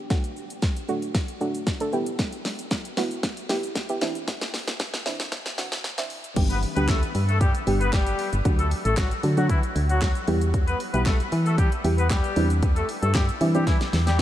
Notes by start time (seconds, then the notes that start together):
0.10 A3 D4 F#4, kick, snare, closed hi-hat, shaker
0.24 closed hi-hat, shaker
0.36 shaker
0.50 closed hi-hat, shaker
0.62 kick, snare, closed hi-hat, shaker
0.77 closed hi-hat, shaker
0.88 A3 D4 F#4, shaker
1.02 closed hi-hat, shaker
1.15 kick, snare, closed hi-hat, shaker
1.28 closed hi-hat, shaker
1.40 A3 D4 F#4, shaker
1.55 closed hi-hat, shaker
1.67 kick, snare, closed hi-hat, shaker
1.80 A3 D4 A4, closed hi-hat, shaker
1.93 B3 E4 G4, shaker
2.06 closed hi-hat, shaker
2.19 kick, snare, closed hi-hat, shaker
2.33 closed hi-hat, shaker
2.45 snare, open hi-hat, shaker
2.59 closed hi-hat, shaker
2.71 kick, snare, closed hi-hat, shaker
2.85 closed hi-hat, shaker
2.97 B3 E4 F#4, snare, open hi-hat, shaker
3.11 closed hi-hat, shaker
3.23 kick, snare, closed hi-hat, shaker
3.37 closed hi-hat, shaker
3.49 B3 E4 G4, snare, open hi-hat, shaker
3.63 closed hi-hat, shaker
3.75 kick, snare, closed hi-hat, shaker
3.89 B3 E4 G4, closed hi-hat, shaker
4.01 E3 C4 D4 E4, snare, open hi-hat, shaker
4.15 closed hi-hat, shaker
4.28 kick, snare, closed hi-hat, shaker
4.41 snare, closed hi-hat, shaker
4.54 snare, open hi-hat, shaker
4.68 snare, closed hi-hat, shaker
4.80 kick, snare, closed hi-hat, shaker
4.94 snare, closed hi-hat, shaker
5.06 E3 C4 D4 E4, snare, open hi-hat, shaker
5.20 snare, closed hi-hat, shaker
5.32 kick, snare, closed hi-hat, shaker
5.46 snare, closed hi-hat, shaker
5.58 E3 C4 D4 F#4, snare, open hi-hat, shaker
5.72 snare, closed hi-hat, shaker
5.84 snare, closed hi-hat, shaker
5.98 E3 C4 D4 E4, snare, closed hi-hat, shaker
6.10 open hi-hat, shaker
6.24 closed hi-hat, shaker
6.36 G1 G3 B3 D4 G4, kick, closed hi-hat, crash, shaker
6.50 B3 B4, closed hi-hat, shaker
6.63 open hi-hat, shaker
6.76 D2 G3 B3 D4 G4 B4, closed hi-hat, shaker
6.88 A3 A4, kick, snare, clap, closed hi-hat, shaker
7.03 closed hi-hat, shaker
7.15 G2, open hi-hat, shaker
7.29 A3 A4, closed hi-hat, shaker
7.41 G3 G4, kick, closed hi-hat, shaker
7.55 closed hi-hat, shaker
7.67 G1 G3 B3 D4 G4, open hi-hat, shaker
7.81 B3 B4, closed hi-hat, shaker
7.93 G3 G4, kick, snare, clap, closed hi-hat, shaker
8.07 closed hi-hat, shaker
8.19 open hi-hat, shaker
8.33 G1, closed hi-hat, shaker
8.45 D2 F#3 A3 D4 F#4, kick, closed hi-hat, shaker
8.59 A3 A4, closed hi-hat, shaker
8.71 open hi-hat, shaker
8.85 A1 A3 A4, closed hi-hat, shaker
8.97 F#3 F#4, kick, snare, clap, closed hi-hat, shaker
9.11 closed hi-hat, shaker
9.23 D3 F#3 A3 D4 F#4, open hi-hat, shaker
9.37 F#3 A3 D4 F#4, closed hi-hat, shaker
9.49 E3 E4, kick, closed hi-hat, shaker
9.63 closed hi-hat, shaker
9.75 D2, open hi-hat, shaker
9.89 F#3 F#4, closed hi-hat, shaker
10.02 kick, snare, clap, closed hi-hat, shaker
10.15 closed hi-hat, shaker
10.27 E2 G3 B3 E4 G4, open hi-hat, shaker
10.41 closed hi-hat, shaker
10.54 kick, closed hi-hat, shaker
10.68 B3 B4, closed hi-hat, shaker
10.80 open hi-hat, shaker
10.94 B1 G3 B3 E4 G4 B4, closed hi-hat, shaker
11.06 A3 A4, kick, snare, clap, closed hi-hat, shaker
11.20 closed hi-hat, shaker
11.32 E3, open hi-hat, shaker
11.46 A3 A4, closed hi-hat, shaker
11.58 G3 G4, kick, closed hi-hat, shaker
11.72 closed hi-hat, shaker
11.84 E2 G3 B3 E4 G4, open hi-hat, shaker
11.98 B3 B4, closed hi-hat, shaker
12.10 G3 G4, kick, snare, clap, closed hi-hat, shaker
12.24 closed hi-hat, shaker
12.36 E2 G3 C4 D4 E4, open hi-hat, shaker
12.50 closed hi-hat, shaker
12.63 kick, closed hi-hat, shaker
12.76 A3 A4, closed hi-hat, shaker
12.89 open hi-hat, shaker
13.02 G2 A3 A4, closed hi-hat, shaker
13.15 G3 G4, kick, snare, clap, closed hi-hat, shaker
13.29 closed hi-hat, shaker
13.41 E3 G3 C4 D4 E4, open hi-hat, shaker
13.54 G3 C4 D4 E4 G4, closed hi-hat, shaker
13.67 E3 E4, kick, snare, closed hi-hat, shaker
13.81 snare, closed hi-hat, shaker
13.93 E2, snare, open hi-hat, shaker
14.07 G3 G4, snare, closed hi-hat, shaker